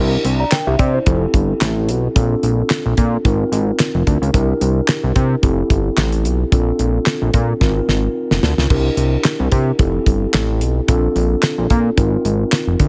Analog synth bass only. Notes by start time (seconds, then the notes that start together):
Already playing: C2
0.25 C2
0.67 C2
0.79 C3
1.07 F1
1.34 G1
1.61 A1
1.89 B1
2.16 A#1
2.43 A#1
2.86 A#1
2.98 A#2
3.25 G#1
3.52 G#1
3.94 F1
4.07 D2
4.22 C#2
4.34 C2
4.61 C2
5.04 C2
5.16 C3
5.43 F1
5.70 G1
5.97 A1
6.25 B1
6.52 A#1
6.79 A#1
7.22 A#1
7.34 A#2
7.61 G#1
7.88 G#1
8.31 F1
8.43 D2
8.58 C#2
8.70 C2
8.97 C2
9.40 C2
9.52 C3
9.79 F1
10.06 G1
10.34 A1
10.61 B1
10.88 A#1
11.16 A#1
11.58 A#1
11.70 A#2
11.98 G#1
12.25 G#1
12.67 F1
12.80 D2